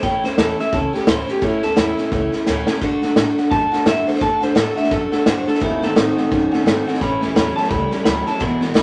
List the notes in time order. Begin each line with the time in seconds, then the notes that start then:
0.02 A1 A2 E3 A3 C#4 E4 G5, kick, snare
0.22 D2 A3 C#4 E4 C5, snare
0.37 E2 A2 E3 A3 C#4 E4 A4, snare, hi-hat pedal
0.58 A3 C#4 E4 E5, snare
0.72 C#2 E3 A3 C#4 E4 A4, kick, snare
0.93 A3 C#4 E4 G4, snare
1.07 D2 A2 E3 A3 C#4 E4 C5, snare, hi-hat pedal
1.27 A3 C#4 E4 G4, snare
1.41 A1 A2 E3 A3 C#4 E4, kick, snare
1.62 D2 A3 C#4 E4 A4, snare
1.76 E2 A2 E3 A3 C#4 E4, snare, hi-hat pedal
1.97 A3 C#4 E4, snare
2.11 C#2 E3 A3 C#4 E4, kick, snare
2.32 A3 C#4 E4, snare
2.46 D2 A2 E3 A3 C#4 E4, snare, hi-hat pedal
2.67 A3 C#4 E4, snare
2.81 D2 D3 A3 D4 F#4, kick, snare
3.02 G2 A3 D4 F#4, snare
3.16 A2 D3 A3 D4 F#4, snare, hi-hat pedal
3.38 A3 D4 F#4, snare
3.51 F#2 D3 A3 D4 F#4 A5, kick, snare
3.71 A3 D4 F#4, muted upright bass stroke, snare
3.86 G2 D3 A3 D4 F#4 E5, snare, hi-hat pedal
4.06 A3 D4 F#4 C5, muted upright bass stroke, snare
4.15 snare
4.20 D2 D3 A3 D4 F#4 A5, kick, snare
4.40 G2 A3 D4 F#4 C5, snare
4.55 A2 D3 A3 D4 F#4 A4, snare, hi-hat pedal
4.75 A3 D4 F#4 E5, snare
4.84 snare
4.91 F#2 D3 A3 D4 F#4 A4, kick, snare
5.12 A3 D4 F#4 A4, snare
5.26 G2 D3 A3 D4 F#4 C5, snare, hi-hat pedal
5.46 A3 D4 F#4 A4, muted upright bass stroke, snare
5.55 snare
5.60 D#2 D#3 A3 A#3 C4 E4 F#4, kick, snare
5.82 G#2 D#3 A3 A#3 C4 F#4 A4, snare
5.95 A2 D#3 A3 C4 D#4 F#4, snare, hi-hat pedal
6.17 D#3 A3 C4 F#4, snare
6.31 F#2 D#3 A3 C4 C#4 F#4, kick, snare
6.51 D#3 A3 C4 C#4 F#4, snare
6.65 G#2 D#3 A3 C4 F#4, snare, hi-hat pedal
6.87 D#3 A3 C4 F#4, snare
6.95 snare
7.01 A1 A2 E3 A3 C#4 E4 B5, kick, snare
7.21 D2 A2 E3 A3 C#4 E4, snare
7.35 E2 A2 E3 F#3 A3 C#4 E4 B5, snare, hi-hat pedal
7.55 A2 F#3 A3 C#4 E4 A5, snare
7.64 snare
7.70 C#2 A2 E3 G3 A3 C#4 B5, kick, snare
7.74 E4
7.91 A2 G3 A3 C#4 E4, snare
8.05 D2 A2 E3 F#3 A3 C#4 E4 B5, snare, hi-hat pedal
8.26 A2 F#3 A3 C#4 E4 A5, snare
8.39 E1 E2 B2 E3 G#3 B3 E4 B5, kick, snare
8.61 A1 E2 B2 E3 G#3 B3 E4, snare
8.74 B1 E2 B2 C#3 E3 G#3 B3 E4 B5, snare, hi-hat pedal